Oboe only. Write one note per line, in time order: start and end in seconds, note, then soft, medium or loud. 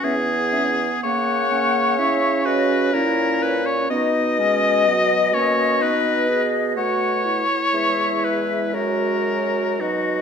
0.04 1.02 G#4 loud
1.03 2.47 C#5 loud
2.46 2.95 B4 medium
2.94 3.44 A#4 loud
3.42 3.68 B4 medium
3.66 3.90 C#5 medium
3.90 5.35 D#5 loud
5.34 5.84 C#5 medium
5.82 6.50 B4 medium
6.78 8.26 C#5 loud
8.25 8.76 B4 medium
8.75 9.82 A#4 medium
9.81 10.21 F#4 medium